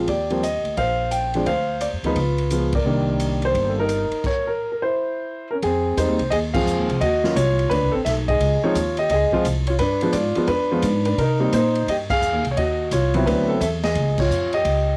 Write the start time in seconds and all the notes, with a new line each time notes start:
0.07 D#2 G4 D5, kick, ride
0.30 F3 G3 A#3 C4, ride
0.43 D#5, hi-hat pedal, ride
0.64 D2, ride
0.77 A#1 C5 F5, kick, ride
1.11 G5, hi-hat pedal, ride
1.34 F3 G#3 C4 D4, ride
1.46 D2 C5 F5, kick, ride
1.81 D5, hi-hat pedal, ride
1.93 F2
2.03 D2 F3 G#3 B3 D#4 F4 B4, ride
2.16 C#2, kick, ride
2.38 ride
2.50 F3 G#3 B3 F4, hi-hat pedal, ride
2.73 A#4 D5, kick, ride
2.84 C2 D#3 G3 A#3 D4
3.20 hi-hat pedal, ride
3.42 C5, ride
3.55 G1, kick, ride
3.69 A4
3.79 D#4 A#4
3.89 hi-hat pedal, ride
4.11 muted upright bass stroke, ride
4.24 A#4 C#5, kick, crash
4.47 A#4
4.72 A#4
4.82 E4 C5
5.51 C#4 A#4
5.62 F2 C4 G#4, kick, ride
5.97 E2 G3 G#3 C4 D#4 C5, kick, hi-hat pedal, ride
6.08 D#2
6.19 C2, ride
6.30 D#2 G#4 D#5, kick, ride
6.54 F3 G#3 C4 F4 G#4 F5, kick, crash
6.66 F2, hi-hat pedal
6.78 D#2
6.89 C2, ride
7.01 D#2 F#4 D#5, kick, ride
7.24 F#3 A#3 C#4 F4, snare
7.36 C2 F4 C#5, kick, hi-hat pedal, ride
7.59 ride
7.70 D2 D4 B4, kick, ride
7.82 C2
7.92 A1 C4 A4
8.05 B1 A4 E5, kick, snare, hi-hat pedal, ride
8.28 G#4 D#5, kick, ride
8.40 C#2, kick, ride
8.64 F3 G#3 C4 D#4 F4 C#5
8.75 D#2, kick, hi-hat pedal, ride
8.97 G4 D#5, ride
9.10 C#2 G#4 D#5, kick, ride
9.32 F3 G#3 C4 F4, kick
9.44 C2, kick, hi-hat pedal, ride
9.67 F4 C#5, ride
9.79 G2 D4 B4, kick, ride
10.01 F3 G#3 B3 D4, ride
10.13 G#2 F4 D5, kick, hi-hat pedal, ride
10.35 F3 G#3 B3 F4, muted upright bass stroke, ride
10.47 F2 D4 B4, kick, ride
10.72 F3 G#3 B3 F4
10.82 G#2, kick, hi-hat pedal, ride
11.05 D4 B4, ride
11.18 C3 D#4 A#4, kick, ride
11.40 G3 A#3 C4 D#4
11.52 A#2 D#4 C5, kick, hi-hat pedal, ride
11.75 ride
11.87 G2 G4 D#5, kick, ride
12.10 G#4 F5, kick, crash
12.22 F2, hi-hat pedal
12.33 D#2
12.44 C2, ride
12.51 C#5
12.57 D#2 F#4 D#5, kick, ride
12.91 C2 F4 C#5, kick, hi-hat pedal, ride
13.14 F#3 B3 C4 E4, ride
13.26 D2 D4 B4, kick, ride
13.48 C4 A4
13.61 E2 A4 E5, kick, hi-hat pedal, ride
13.83 G#4 D#5, snare, ride
13.95 C#2, kick, ride
14.18 F4 C#5, kick, crash
14.30 F2, hi-hat pedal
14.53 G4 D#5, ride
14.65 C#2, kick, ride